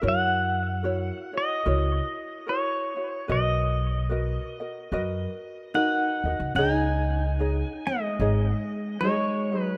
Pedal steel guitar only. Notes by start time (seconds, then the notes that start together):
0.08 F#5
1.38 D#5
2.49 C#5
3.32 D#5
5.75 F#5
6.56 G5
6.73 G#5
7.87 D#5
9.01 C#5
9.62 B4